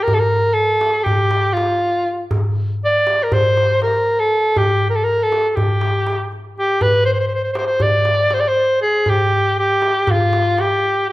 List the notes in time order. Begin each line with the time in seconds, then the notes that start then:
0.03 A#4
0.08 darbuka dum
0.14 A4
0.19 A#4, darbuka ka
0.53 A4
0.81 darbuka tek
1.03 G4, darbuka dum
1.31 darbuka tek
1.53 F4, darbuka tek
2.07 darbuka ka
2.31 darbuka dum
2.44 darbuka ka
2.85 D5
3.07 darbuka tek
3.23 A#4
3.32 C5, darbuka dum
3.57 darbuka tek
3.82 A#4, darbuka tek
4.19 A4
4.32 darbuka ka
4.56 G4, darbuka dum
4.70 darbuka ka
4.90 A#4
4.95 A4
5.04 A#4
5.23 A4
5.32 darbuka tek
5.50 A4
5.55 G4, darbuka dum
5.81 darbuka tek
6.07 darbuka tek
6.32 darbuka ka
6.58 G4, darbuka ka
6.81 B4, darbuka dum
6.93 darbuka ka
7.05 C5
7.13 C5
7.19 C5
7.28 C5
7.34 C5
7.44 C5
7.53 C5, darbuka tek
7.58 C5
7.67 C5
7.80 D5, darbuka dum
8.05 darbuka tek
8.31 C5, darbuka tek
8.40 D5
8.48 C5
8.55 darbuka ka
8.82 G#4, darbuka ka
9.06 G4, darbuka dum
9.20 darbuka ka
9.59 G4
9.82 darbuka tek
10.07 F4, darbuka dum
10.33 darbuka tek
10.58 G4, darbuka tek
10.84 darbuka ka
11.08 darbuka ka